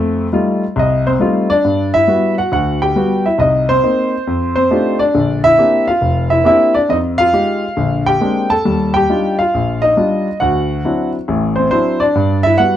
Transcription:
grand piano
Already playing: F2 A3
0.33 G3 A3 D#4 F4
0.76 C2 D#5
1.07 C4 C5
1.20 G3 A3 D#4 F4
1.50 D4 D5
1.64 G2
1.94 E4 E5
2.08 G3 B3 F#4
2.38 F#4 F#5
2.52 D2 F#4 F#5
2.82 G4 G5
2.96 G3 B3 F#4
3.26 E4 E5
3.38 C2 D#4 D#5
3.69 C4 C5
3.83 A#3 C4 D#4
4.27 F2
4.56 C4 C5
4.71 A3 D4 D#4 F4 G4
4.99 D4 D5
5.14 A#1 D3
5.44 E4 E5
5.58 A#3 C4 D4 G4
5.88 F4 F5
6.01 F1
6.30 E4 E5
6.44 A#3 C4 D4 G4 E5
6.48 E4
6.75 D4 D5
6.89 F2 D#4 D#5
7.18 F4 F5
7.33 G#3 D#4 F4 G4
7.77 A#1 D3
8.06 G4 G5
8.21 G#3 A#3 C4 D4 G4
8.50 A4 A5
8.65 D#2 G3
8.94 G4 G5
9.10 G3 D4 D#4 F4
9.39 F4 F5
9.54 A#1
9.82 D#4 D#5
9.97 G3 D4 D#4 F4
10.40 D2 F#4 F#5
10.85 F#3 C4 D4 E4
11.28 A1 A2
11.56 C4 C5
11.71 F#3 C4 D4 E4 C5
12.00 D4 D5
12.15 G2
12.43 E4 E5
12.58 G3 B3 F#4 F#5

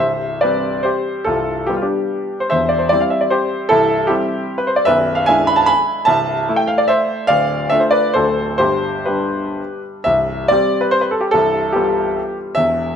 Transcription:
grand piano
Already playing: C5 E5
0.00 C1 C2
0.41 G3 C4 G4 B4 D5
0.83 G4 C5
1.25 C1 C2 F4 A4
1.67 G3 B3 F4 G4
1.76 F4
1.82 D4 G4
2.40 C5
2.50 E1 E2 C5 E5
2.69 D5
2.79 C5
2.89 G3 C4 E4 D5
3.00 F5
3.10 E5
3.21 D5
3.30 G4 C5
3.69 C1 C2 E4 A4
4.07 G3 C4 E4 G4
4.58 B4
4.67 C5
4.76 D5
4.85 B0 B1 B4 E5
5.15 F5
5.26 G#3 D4 E4 E5 G#5
5.47 B5
5.56 A5
5.66 G#5 B5
6.05 C1 C2 E5 A5
6.49 A3 E4
6.56 G5
6.67 F5
6.78 D5
6.88 C5 E5
7.27 D1 D2 D5 F5
7.70 A3 D4 F4 E5
7.80 C5
7.91 B4 D5
8.14 D1 D2 A3 D4 F#4 A4 C5
8.58 G1 G2 G4 C5
9.06 G3 D4 G4 B4
10.04 C1 C2 E5
10.48 G3 C4 G4 D5
10.81 B4
10.91 C5
11.01 B4
11.11 A4
11.21 G4
11.31 C1 C2 A4
11.73 G3 B3 F4 G4
12.55 E1 E2 E5

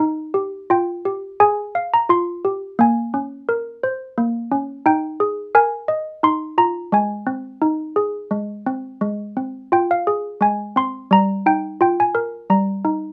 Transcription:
handbells
0.00 D#4
0.34 G4
0.70 F4 G5
1.05 G4
1.40 G#4 G#5
1.75 F5
1.94 A#5
2.09 F4 C6
2.45 G4
2.79 A#3 G#5
3.14 C#4
3.49 A#4
3.83 C5
4.18 A#3
4.52 C#4
4.86 D#4 G5
5.20 G#4
5.55 A#4 G#5
5.88 D#5
6.23 D#4 C6
6.58 F4 A#5
6.92 G#3 G#5
7.27 C4
7.62 D#4
7.96 G#4
8.31 G#3
8.66 C4
9.01 G#3
9.37 C4
9.72 F4 G5
9.91 F5
10.07 G#4
10.41 G#3 G#5
10.76 C4 C6
11.11 G3 A#5
11.46 D#4 G5
11.81 F4 G5
12.00 G#5
12.15 A#4
12.50 G3 A#5
12.85 D#4

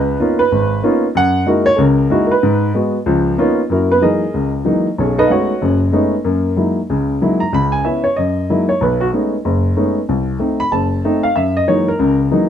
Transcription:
grand piano
Already playing: C#2 B4
0.20 A#3 B3 C#4 D#4 F4
0.39 B4
0.52 G#1
0.83 A#3 B3 C#4 D#4 F4
1.15 F#2 F#5
1.46 G#3 A#3 D#4 E4 F#4 A#4
1.66 C#5
1.76 C#2 C#3 A4
1.80 A#4
2.10 G#3 A#3 D#4 E4 F#4
2.27 A#4
2.31 B4
2.43 G#2
2.74 G#3 B3 F#4
3.06 C#2 F3
3.38 A#3 B3 C#4 D#4 F4
3.70 F#2 A#3 E4 F#4 A#4
3.92 B3 B4
4.01 E3 F#3 G#3 A#3 D#4 G#4 A#4 D#5
4.34 C#2
4.65 E3 F#3 G#3 A#3 D#4
4.98 B1 C#4 G#4 A4 C#5
5.18 D#4 A4 B4 D#5
5.26 G#3 A3 B3 C#4 F5
5.31 D#4 F#4 C#5 D#5 F#5
5.61 F#1 F#2
5.92 G#3 A3 B3 C#4 D#4
6.24 F#2 A#3
6.56 F#3 G#3 A#3 D#4 E4
6.90 C#2 C#3
7.21 F#3 G#3 A#3 D#4 E4
7.40 A#5
7.53 C#2 C#3 B5
7.72 G#5
7.85 B3 C#4 E4 E5
8.04 C#5
8.16 F#2 D#5
8.50 F#3 G#3 A#3 D#4 E4
8.69 C#5
8.81 B1 B4
9.01 F#4
9.13 G#3 A3 B3 C#4 D#4
9.45 F#1
9.76 G#3 A3 B3 C#4 D#4
10.09 C2
10.39 A3 C4 D#4
10.60 B5
10.72 F#1 A5
11.05 A3 C4 D#4
11.23 F5
11.36 F#2 E5
11.57 D#5
11.68 E3 F#3 G#3 A#3 D#4 C#5
11.88 A#4
11.99 C#2 C#3
12.31 E3 F#3 G#3 A#3 D#4

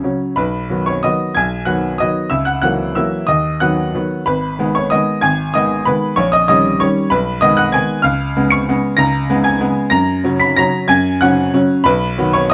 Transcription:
grand piano
0.03 C#3 F#3 C#4
0.36 B1 B4 B5
0.70 D#3 F#3 B3
0.86 C#5 C#6
1.03 D#3 F#3 B3 D#5 D#6
1.35 B1 G#5 G#6
1.65 D#3 F#3 B3 F#5 F#6
1.98 D#3 F#3 B3 D#5 D#6
2.30 C#2 E5 E6
2.45 F#5 F#6
2.62 E3 F#3 A#3 F#5 F#6
2.95 E3 F#3 A#3 E5 E6
3.27 D#2 D#5 D#6
3.60 D#3 F#3 B3 F#5 F#6
3.94 D#3 F#3 B3
4.26 G#1 B4 B5
4.59 D#3 G#3 B3
4.75 C#5 C#6
4.90 D#3 G#3 B3 D#5 D#6
5.21 G#1 G#5 G#6
5.54 D#3 G#3 B3 D#5 D#6
5.85 D#3 G#3 B3 B4 B5
6.16 A#1 C#5 C#6
6.32 D#5 D#6
6.48 D#3 G3 C#4 D#5 D#6
6.80 D#3 G3 C#4 C#5 C#6
7.10 B1 B4 B5
7.41 D#3 G#3 B3 D#5 D#6
7.57 F#5 F#6
7.72 D#3 G#3 B3 G#5 G#6
8.02 C#2 F5 F6
8.37 C#3 G#3 B3
8.50 C#6 C#7
8.69 C#3 G#3 B3
8.97 C#2 A#5 A#6
9.29 C#3 G#3 B3
9.44 G#5 G#6
9.60 C#3 G#3 B3
9.90 F#2 A#5 A#6
10.24 C#3 F#3 C#4
10.40 B5 B6
10.56 C#3 F#3 C#4 A#5 A#6
10.88 F#2 G#5 G#6
11.21 C#3 F#3 C#4 F#5 F#6
11.53 C#3 F#3 C#4
11.84 B1 B4 B5
12.18 D#3 F#3 B3
12.33 C#5 C#6
12.50 D#6

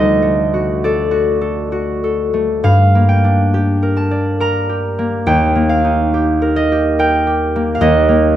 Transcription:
harp
Already playing: D2 A3 A4 D#5
0.22 A3
0.54 F#4
0.84 A4 D5
1.11 F#4
1.41 A4
1.72 F#4
2.04 A4
2.34 A3
2.64 G2 F5
2.95 A#3
3.09 G5
3.24 D4
3.54 G4
3.83 A#4
3.97 A5
4.11 D5
4.40 A#4 A#5
4.69 G4
4.99 A#3
5.27 D#2 G5
5.55 A#3
5.69 F5
5.84 D#4
6.14 G4
6.42 A#4
6.56 D#5
6.72 G4
6.99 A#4 G5
7.27 G4
7.56 A#3
7.75 F5
7.81 D#2 D#5
8.09 A#3

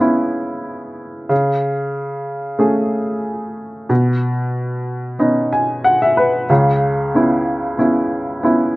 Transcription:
upright piano
Already playing: C#3
0.00 B3 C#4 E4
1.29 C#3
2.59 A3 C#4 G#4
3.89 B2
5.19 B3 C#4 D#4
5.53 G#5
5.84 F#5
6.02 E5
6.17 B4
6.49 C#2 C#3
7.15 B3 C#4 E4
7.78 B3 C#4 E4
8.43 B3 C#4 E4

